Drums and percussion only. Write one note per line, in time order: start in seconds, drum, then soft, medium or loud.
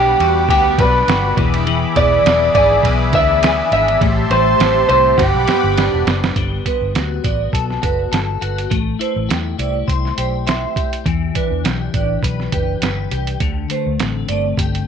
0.20 ride medium
0.49 kick loud
0.49 ride medium
0.78 kick loud
0.78 ride medium
1.08 snare loud
1.08 ride medium
1.37 kick loud
1.37 ride medium
1.54 ride medium
1.67 ride medium
1.96 kick medium
1.96 ride medium
2.26 snare loud
2.26 ride medium
2.55 kick medium
2.55 ride medium
2.83 kick medium
2.83 ride medium
3.13 kick loud
3.13 ride medium
3.43 snare loud
3.43 ride medium
3.72 ride medium
3.88 ride medium
4.01 kick loud
4.01 ride medium
4.31 ride medium
4.60 snare loud
4.60 ride medium
4.89 ride medium
5.18 kick loud
5.18 snare medium
5.18 ride medium
5.47 snare medium
5.47 ride medium
5.77 snare loud
5.77 ride medium
6.07 snare loud
6.07 ride medium
6.24 snare loud
6.36 kick medium
6.36 closed hi-hat medium
6.66 kick medium
6.66 closed hi-hat medium
6.95 snare medium
6.95 closed hi-hat medium
7.24 kick medium
7.24 closed hi-hat medium
7.53 kick medium
7.53 closed hi-hat medium
7.70 snare soft
7.83 kick medium
7.83 closed hi-hat medium
8.13 snare loud
8.13 closed hi-hat medium
8.42 closed hi-hat medium
8.58 closed hi-hat medium
8.71 kick loud
8.71 closed hi-hat medium
9.01 closed hi-hat medium
9.30 snare loud
9.30 closed hi-hat medium
9.59 closed hi-hat medium
9.88 kick medium
9.88 closed hi-hat medium
10.05 snare soft
10.18 closed hi-hat medium
10.47 snare loud
10.47 closed hi-hat medium
10.76 kick loud
10.76 closed hi-hat medium
10.93 closed hi-hat medium
11.06 kick loud
11.06 closed hi-hat medium
11.35 kick medium
11.35 closed hi-hat medium
11.65 snare loud
11.65 closed hi-hat medium
11.94 kick medium
11.94 closed hi-hat medium
12.23 kick medium
12.23 closed hi-hat medium
12.40 snare soft
12.52 kick medium
12.52 closed hi-hat medium
12.82 snare loud
12.82 closed hi-hat medium
13.11 closed hi-hat medium
13.27 closed hi-hat medium
13.40 kick medium
13.40 closed hi-hat medium
13.70 closed hi-hat medium
13.99 snare loud
13.99 closed hi-hat medium
14.29 closed hi-hat medium
14.57 kick medium
14.57 closed hi-hat medium
14.75 closed hi-hat soft